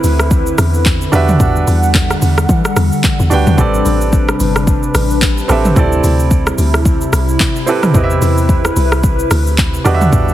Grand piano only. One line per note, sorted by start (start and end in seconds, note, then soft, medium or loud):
0.00 1.15 C4 medium
0.00 0.10 E4 medium
0.00 0.10 G4 medium
0.00 0.11 B4 medium
0.00 0.11 E5 medium
1.12 2.00 D4 medium
1.12 2.01 F#4 medium
1.12 2.01 G4 medium
1.12 2.02 B4 medium
1.12 2.02 E5 loud
3.30 3.53 D4 medium
3.30 3.54 F#4 medium
3.30 3.54 G4 medium
3.30 3.54 B4 medium
3.30 3.55 G5 medium
3.57 4.46 C4 medium
3.57 4.46 G4 medium
3.57 4.47 A4 medium
3.57 4.47 B4 medium
3.57 4.48 D5 loud
5.48 5.71 C4 medium
5.48 5.72 G4 medium
5.48 5.72 A4 medium
5.48 5.73 B4 medium
5.48 5.73 E5 medium
5.75 6.64 C4 medium
5.75 6.65 E4 medium
5.75 6.65 G4 medium
5.75 6.65 A4 medium
5.75 6.66 D5 loud
7.66 7.90 C4 medium
7.66 7.90 E4 medium
7.66 7.90 G4 medium
7.66 7.91 A4 medium
7.66 7.91 B4 medium
7.94 8.82 C4 medium
7.94 8.83 E4 medium
7.94 8.83 G4 medium
7.94 8.84 B4 medium
7.94 8.03 D#5 medium
8.04 8.87 E5 medium
9.85 10.34 D4 medium
9.85 10.34 F#4 medium
9.85 10.34 G4 medium
9.85 10.34 B4 medium
9.85 9.94 D#5 medium
9.95 10.34 E5 loud